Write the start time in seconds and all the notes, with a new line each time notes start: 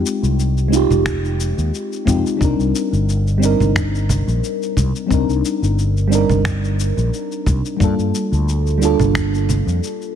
Already playing: G#3 C4 D#4 F4 G4
0.06 shaker
0.23 C2, shaker
0.39 shaker
0.57 shaker
0.68 G#3 C4 D#4
0.73 F4 G4, shaker
0.90 F1, low conga, shaker
1.06 finger snap, kick, shaker
1.25 shaker
1.40 shaker
1.58 D#2, shaker
1.74 shaker
1.92 shaker
2.05 F2 G#3 C4 D#4 F4 G4, kick, low conga, shaker
2.26 shaker
2.37 C2 G3 C4 D4, kick
2.42 D#4 A#4, shaker
2.59 C2, shaker
2.75 shaker
2.92 G1, shaker
3.09 shaker
3.27 shaker
3.38 G3 C4 D4
3.43 D#4 A#4, shaker
3.60 G1, low conga, shaker
3.76 finger snap, kick, shaker
3.95 shaker
4.09 low conga, shaker
4.27 A#1, shaker
4.44 shaker
4.62 shaker
4.77 C2, kick, low conga, shaker
4.96 shaker
5.07 G3 C4 D4
5.11 C2 D#4 A#4, kick, shaker
5.28 C2, shaker
5.45 shaker
5.62 G1, shaker
5.79 shaker
5.97 shaker
6.08 G3 C4 D4
6.12 D#4 A#4, shaker
6.30 G1, low conga, shaker
6.45 finger snap, kick, shaker
6.64 shaker
6.79 shaker
6.97 A#1, shaker
7.13 shaker
7.32 shaker
7.46 C2, kick, low conga, shaker
7.65 shaker
7.77 G2 G3 A#3 D4, kick
7.81 F4 A4, shaker
7.98 G2, shaker
8.15 shaker
8.32 D2, shaker
8.48 shaker
8.66 shaker
8.78 G3 A#3 D4
8.82 F4 A4, shaker
8.99 G1, low conga, shaker
9.15 finger snap, kick, shaker
9.34 shaker
9.49 low conga, shaker
9.66 F2, shaker
9.83 shaker
10.02 shaker